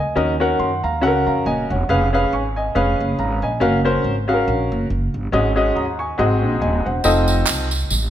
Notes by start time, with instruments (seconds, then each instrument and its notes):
Already playing: grand piano G#5
0.00 upright bass D2, grand piano D#5
0.16 upright bass D#2, grand piano D#3 C#4 F#4 A#4 D#5
0.40 grand piano C#4 F#4 A#4 F#5
0.59 upright bass F#2, grand piano F#5 C6
0.84 upright bass D#2, grand piano F5 A#5
1.01 upright bass C#2, grand piano C#3 C#4 F#4 A4 F#5
1.08 grand piano A#4
1.27 upright bass F2, grand piano F5 A#5
1.46 upright bass D#1, grand piano D#5 G#5
1.70 upright bass E1, grand piano C#5 F#5
1.89 upright bass F1, grand piano C#4 G#4 B4 F5
2.13 grand piano C#4 G#4 B4 F5
2.33 upright bass G#1, grand piano G#5 C#6
2.56 grand piano D#5 G#5
2.75 upright bass F1, grand piano C#4 G#4 B4 F5
3.00 upright bass F#1
3.19 upright bass G#1, grand piano F5 A#5
3.42 upright bass A#1, grand piano D#5 G#5
3.60 upright bass F#1, grand piano C#4 F#4 A#4 F5
3.85 grand piano C#4 F#4 A#4 C5
4.04 upright bass G#1
4.28 grand piano C#4 F#4 G#4 F5
4.34 grand piano A#4
4.48 upright bass A#1
4.72 upright bass F#1
4.90 upright bass F#1
5.14 upright bass G1
5.32 upright bass G#1, grand piano G#2 C#4 F#4 G#4 D#5
5.56 grand piano C#4 F#4 G#4 D#5
5.75 upright bass D#2, grand piano A#5 D#6
5.99 grand piano G#5 C#6
6.18 upright bass G#1, grand piano G#2 C4 F#4 G#4 D#5
6.44 upright bass A#1
6.61 upright bass D#1, grand piano D#5 G#5
6.86 upright bass E1, grand piano C5 F#5
7.04 upright bass F1, grand piano C4 D#4 F4 A4 D#5, tambourine
7.28 tambourine
7.47 upright bass C2, clap, tambourine
7.71 tambourine
7.91 upright bass A1, tambourine